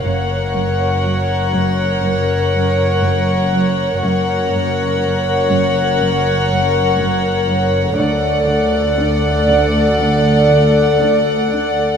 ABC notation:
X:1
M:4/4
L:1/8
Q:1/4=60
K:F#mix
V:1 name="Violin section"
f8 | f8 | f8 |]
V:2 name="Violin section"
c8 | c8 | =d8 |]
V:3 name="Viola section"
A8 | A8 | =A8 |]
V:4 name="Cello section" clef=bass
F,, F,, F, F,, F,, F,, F,, F, | F,, F,, F, F,, F,, F,, F,, F, | =D, D, =D D, D, D, D, D |]
V:5 name="Cello section" clef=bass
F,,8 | F,,8 | =D,,8 |]
V:6 name="Double bass section" clef=bass
F,,,8 | F,,,8 | =D,,8 |]